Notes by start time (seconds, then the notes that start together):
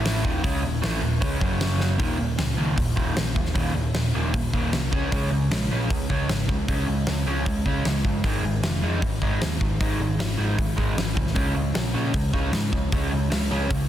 Already playing: A1 A2 E3 A3
0.05 snare, open hi-hat
0.24 D#1 D#2 A#2 D#3, kick
0.43 C#2 C#3 G#3 C#4, kick, open hi-hat
0.62 D#1 D#2 A#2
0.82 A1 A2 E3 A3, snare, open hi-hat
1.01 D#1 D#2 A#2
1.21 C#2 C#3 G#3 C#4, kick, open hi-hat
1.40 F#1 F#2 C#3 F#3, kick
1.61 snare, open hi-hat
1.80 snare
1.98 D#1 D#2 A#2 D#3, kick, open hi-hat
2.19 D#1 D#2 A#2
2.38 C#2 D#2 A#2, snare, open hi-hat
2.57 C#2 D#2 A#2 D#3
2.77 D#1 D#2 A#2, kick, open hi-hat
2.96 D#1 D#2 A#2 D#3, kick
3.16 A#1 D#2 A#2, snare, open hi-hat
3.35 D#1 D#2 A#2, kick
3.46 snare
3.55 D#1 D#2 A#2 D#3, kick, open hi-hat
3.74 D#1 D#2 A#2
3.94 D#1 D#2 A#2, snare, open hi-hat
4.14 D#1 D#2 A#2 D#3
4.34 D#1 D#2 A#2, kick, open hi-hat
4.53 D#1 D#2 A#2 D#3, kick
4.72 C2 D#2 A#2, snare, open hi-hat
4.91 C#2 C#3 G#3 C#4, kick
5.11 C#2 C#3 G#3 C#4, kick, open hi-hat
5.31 C#2 C#3 G#3
5.51 A#1 C#3 G#3, snare, open hi-hat
5.71 A#1 C#3 G#3 C#4
5.90 C#2 C#3 G#3, kick, open hi-hat
6.09 C#2 C#3 G#3 C#4, kick
6.29 G#1 C#3 G#3, snare, open hi-hat
6.48 C#2 C#3 G#3, kick
6.68 C#2 C#3 G#3 C#4, kick, open hi-hat
6.87 C#2 C#3 G#3
7.07 C#2 C#3 G#3, snare, open hi-hat
7.27 C#2 C#3 G#3 C#4
7.46 C#2 C#3 G#3, kick, open hi-hat
7.66 C#2 C#3 G#3 C#4, kick
7.85 C#2 C#3 G#3, snare, open hi-hat
8.05 G1 C#3 G#3, kick
8.24 G#1 G#2 D#3 G#3, kick, open hi-hat
8.43 G#1 G#2 D#3
8.62 F1 G#2 D#3, snare, open hi-hat
8.83 F2 G#2 D#3 G#3
9.02 G#1 G#2 D#3, kick, open hi-hat
9.22 G#1 G#2 D#3 G#3, kick
9.41 D#2 G#2 D#3, snare, open hi-hat
9.61 G#1 G#2 D#3, kick
9.80 G#1 G#2 D#3 G#3, kick, open hi-hat
9.99 G#1 G#2 D#3
10.19 G#1 G#2 D#3, snare, open hi-hat
10.38 G#1 G#2 D#3 G#3
10.58 G#1 G#2 D#3, kick, open hi-hat
10.76 G#1 G#2 D#3 G#3, kick
10.96 G#1 G#2 D#3, snare, open hi-hat
11.15 C2 G#2 D#3, kick
11.27 snare
11.35 C#2 C#3 G#3 C#4, kick, open hi-hat
11.54 C#2 C#3 G#3
11.74 A#1 C#3 G#3, snare, open hi-hat
11.94 A#2 C#3 G#3 C#4
12.13 C#2 C#3 G#3, kick, open hi-hat
12.33 C#2 C#3 G#3 C#4, kick
12.52 G#2 C#3 G#3, snare, open hi-hat
12.73 C#2 C#3 G#3, kick
12.92 C#2 C#3 G#3 C#4, kick, open hi-hat
13.11 C#2 C#3 G#3
13.30 C#2 C#3 G#3, snare, open hi-hat
13.51 C#2 C#3 G#3 C#4
13.69 C#2 C#3 G#3, kick, open hi-hat